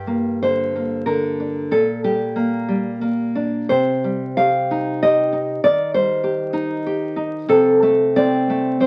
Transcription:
0.00 1.66 G2 soft
0.00 0.38 G4 medium
0.07 0.74 A#3 soft
0.43 1.05 D3 soft
0.43 1.04 C5 medium
0.75 1.71 A#3 soft
1.06 1.70 D3 soft
1.06 1.67 A#4 medium
1.40 1.71 D4 soft
1.71 3.66 A#2 soft
1.71 2.02 A4 medium
2.04 2.67 G3 soft
2.04 3.67 G4 medium
2.36 3.00 A#3 soft
2.69 3.70 G3 soft
3.01 3.70 A#3 soft
3.35 3.70 D4 soft
3.69 5.59 C3 soft
3.69 4.35 C5 medium
4.04 5.01 G3 soft
4.37 5.01 G4 soft
4.37 4.98 F5 medium
4.71 5.31 D#4 soft
5.03 5.63 G4 soft
5.03 5.61 D#5 medium
5.33 5.63 D#4 soft
5.64 7.45 D#3 medium
5.64 5.92 D5 medium
5.94 6.87 G3 soft
5.94 7.45 C5 medium
6.24 6.85 G4 soft
6.53 7.15 D#4 soft
6.86 7.49 G4 medium
7.16 7.48 D#4 soft
7.48 8.87 C3 medium
7.48 8.14 A4 medium
7.83 8.48 A3 soft
8.16 8.79 C4 soft
8.16 8.78 D5 medium
8.50 8.87 A3 soft
8.80 8.87 C4 soft
8.80 8.87 C5 medium

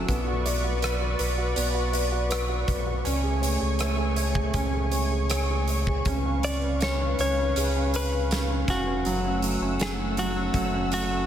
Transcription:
0.00 0.10 C#4 soft
0.08 1.15 B1 loud
0.08 1.54 B3 medium
0.08 3.03 B4 medium
0.08 3.02 D5 medium
0.08 9.01 C#6 medium
0.08 kick medium
0.08 closed hi-hat medium
0.27 0.62 F#4 soft
0.46 1.90 D5 medium
0.46 closed hi-hat medium
0.64 0.99 F#4 soft
0.82 1.18 B4 soft
0.82 cross-stick medium
0.82 closed hi-hat medium
1.01 1.36 F#4 soft
1.19 1.54 B1 medium
1.19 2.28 B4 soft
1.19 closed hi-hat medium
1.38 1.73 F#4 soft
1.56 2.64 B1 medium
1.56 3.01 B3 medium
1.56 closed hi-hat medium
1.74 2.10 F#4 soft
1.93 3.01 D5 soft
1.93 closed hi-hat medium
2.12 2.47 F#4 soft
2.30 2.65 B4 medium
2.30 cross-stick loud
2.30 closed hi-hat medium
2.48 2.85 F#4 soft
2.67 3.03 B1 medium
2.67 3.03 B4 soft
2.67 kick medium
2.67 closed hi-hat medium
2.86 3.05 F#4 soft
3.05 3.57 C#2 medium
3.05 6.03 A3 medium
3.05 4.53 C#4 medium
3.05 6.03 G#5 medium
3.05 closed hi-hat medium
3.24 3.59 G#4 soft
3.41 3.78 C#5 soft
3.41 closed hi-hat medium
3.60 4.51 C#2 medium
3.60 3.95 G#4 soft
3.79 4.15 C#5 soft
3.79 cross-stick medium
3.79 closed hi-hat medium
3.97 4.34 G#4 soft
4.16 4.91 C#5 soft
4.16 closed hi-hat medium
4.35 4.72 G#4 soft
4.35 kick medium
4.54 6.02 C#2 loud
4.54 6.02 C#4 medium
4.54 kick medium
4.54 closed hi-hat medium
4.73 5.10 G#4 soft
4.92 5.29 C#5 soft
4.92 closed hi-hat medium
5.12 5.49 G#4 soft
5.30 5.68 C#5 soft
5.30 cross-stick medium
5.30 closed hi-hat medium
5.51 5.87 G#4 soft
5.68 6.05 C#5 soft
5.68 closed hi-hat medium
5.87 6.06 G#4 soft
5.87 kick medium
6.05 7.14 C#2 loud
6.05 6.24 C#4 medium
6.05 9.02 B4 medium
6.05 9.02 F5 medium
6.05 kick medium
6.05 closed hi-hat medium
6.26 6.43 C#4 soft
6.43 6.83 D5 medium
6.43 closed hi-hat medium
6.64 6.82 C#4 soft
6.81 7.00 C#4 soft
6.81 7.19 C#5 medium
6.81 snare loud
6.81 closed hi-hat medium
7.01 7.18 C#4 soft
7.18 7.53 C#2 medium
7.18 7.37 C#4 soft
7.18 7.91 C#5 loud
7.18 closed hi-hat medium
7.38 7.75 C#4 soft
7.56 8.64 C#2 medium
7.56 9.02 G#4 medium
7.56 closed hi-hat medium
7.77 7.93 C#4 soft
7.94 8.11 C#4 medium
7.94 8.70 B4 medium
7.94 closed hi-hat medium
8.12 8.31 C#4 soft
8.31 8.49 C#4 soft
8.31 snare loud
8.31 closed hi-hat medium
8.50 8.68 C#4 soft
8.68 9.03 F1 medium
8.68 8.86 C#4 soft
8.68 9.39 F#4 medium
8.68 kick medium
8.68 snare soft
8.68 closed hi-hat medium
8.87 9.05 C#4 soft
9.05 9.57 F#1 loud
9.05 9.42 F#3 medium
9.05 11.26 A3 medium
9.05 11.26 F#5 medium
9.05 11.26 E6 medium
9.05 closed hi-hat medium
9.25 9.61 C#4 soft
9.42 9.79 F#3 soft
9.42 closed hi-hat medium
9.60 9.78 F#1 medium
9.60 9.98 C#4 soft
9.80 10.50 F#1 medium
9.80 10.16 F#3 soft
9.80 9.92 G#4 medium
9.80 snare medium
9.80 closed hi-hat medium
9.99 10.35 C#4 soft
10.17 10.53 F#3 medium
10.17 10.88 F#4 medium
10.17 closed hi-hat medium
10.36 10.72 C#4 soft
10.54 11.26 F#1 medium
10.54 10.90 F#3 medium
10.54 kick medium
10.54 closed hi-hat medium
10.74 11.09 C#4 medium
10.92 11.26 F#3 medium
10.92 11.26 F#4 medium
10.92 closed hi-hat medium
11.11 11.26 C#4 soft

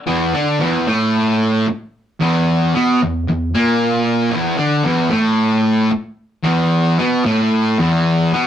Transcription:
0.06 0.32 E2 medium
0.06 0.32 E3 loud
0.33 0.59 D3 loud
0.33 0.60 D4 loud
0.59 0.85 E2 loud
0.59 0.86 E3 loud
0.87 1.66 A2 loud
0.87 1.66 A3 loud
1.67 muted distorted electric guitar stroke medium
2.20 2.72 E2 loud
2.20 2.73 E3 loud
2.74 2.99 B2 medium
2.74 3.00 B3 loud
3.02 3.22 E2 medium
3.28 3.48 E2 medium
3.54 4.33 A#2 loud
3.54 4.33 A#3 loud
4.30 4.57 E2 loud
4.30 4.58 E3 medium
4.56 4.83 D3 medium
4.56 4.84 D4 loud
4.83 5.10 E2 loud
4.83 5.11 E3 loud
5.09 5.90 A2 loud
5.09 5.90 A3 loud
5.90 muted distorted electric guitar stroke medium
6.43 6.97 E2 medium
6.43 6.97 E3 loud
6.99 7.24 B2 medium
6.99 7.25 B3 loud
7.24 7.77 A2 loud
7.24 7.78 A3 loud
7.78 8.31 E2 medium
7.78 8.32 E3 loud
8.32 8.47 B2 medium
8.32 8.47 B3 loud

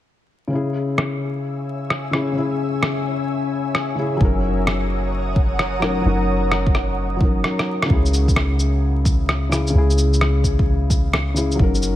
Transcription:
0.47 2.09 C#3 medium
0.47 2.11 C#4 medium
0.52 2.12 E4 medium
0.52 2.13 G#4 medium
0.52 4.17 C#5 medium
0.52 4.17 E5 medium
0.52 4.18 G#5 medium
0.52 4.17 E6 medium
0.98 cross-stick medium
1.90 cross-stick medium
2.11 2.31 C#3 medium
2.11 2.33 C#4 medium
2.11 2.35 E4 medium
2.11 2.35 G#4 medium
2.11 cross-stick medium
2.32 3.94 C#3 medium
2.32 3.95 C#4 medium
2.38 3.96 E4 medium
2.38 3.98 G#4 medium
2.83 cross-stick medium
3.75 cross-stick medium
3.95 4.18 C#3 medium
3.95 4.18 C#4 medium
3.95 4.19 E4 medium
3.95 4.20 G#4 medium
4.17 6.04 F#1 medium
4.17 5.78 F#3 medium
4.17 5.80 C#4 medium
4.21 5.81 D#4 medium
4.21 5.82 A#4 medium
4.21 7.87 C#5 medium
4.21 7.87 F#5 medium
4.21 7.87 A#5 medium
4.21 7.87 D#6 medium
4.21 kick loud
4.67 cross-stick loud
5.36 kick loud
5.59 cross-stick loud
5.80 6.00 F#3 medium
5.80 6.02 C#4 medium
5.80 6.04 D#4 medium
5.80 6.04 A#4 medium
5.80 cross-stick medium
6.01 7.15 F#3 medium
6.01 7.17 C#4 medium
6.05 7.44 F#1 medium
6.05 7.20 D#4 medium
6.05 7.21 A#4 medium
6.51 cross-stick loud
6.67 kick loud
6.75 cross-stick medium
7.16 7.86 F#3 medium
7.16 7.87 C#4 medium
7.21 7.89 D#4 medium
7.21 7.90 A#4 medium
7.21 kick loud
7.44 cross-stick medium
7.59 cross-stick medium
7.82 9.47 C#3 medium
7.82 cross-stick medium
7.88 9.73 C#2 medium
7.88 9.49 C#4 medium
7.88 9.50 E4 medium
7.88 kick loud
7.94 9.52 G#4 medium
8.06 shaker soft
8.14 shaker medium
8.28 kick medium
8.28 shaker soft
8.36 cross-stick loud
8.60 shaker medium
9.05 kick loud
9.05 shaker medium
9.29 cross-stick medium
9.49 9.69 C#3 medium
9.49 9.71 C#4 medium
9.49 9.73 E4 medium
9.49 9.74 G#4 medium
9.49 cross-stick medium
9.49 shaker medium
9.67 11.32 C#3 medium
9.67 shaker soft
9.73 11.58 C#2 medium
9.73 11.33 C#4 medium
9.73 11.35 E4 medium
9.78 11.36 G#4 loud
9.90 shaker soft
9.98 shaker medium
10.14 shaker soft
10.21 cross-stick loud
10.44 kick medium
10.44 shaker medium
10.59 kick loud
10.90 kick loud
10.90 shaker medium
11.13 cross-stick loud
11.34 11.56 C#3 medium
11.34 11.57 C#4 medium
11.34 11.58 E4 medium
11.34 11.58 G#4 medium
11.34 shaker medium
11.52 11.96 F#3 medium
11.52 shaker soft
11.58 11.96 F#1 medium
11.58 11.96 C#4 medium
11.58 11.96 D#4 medium
11.58 kick loud
11.63 11.96 A#4 medium
11.75 shaker soft
11.82 shaker medium

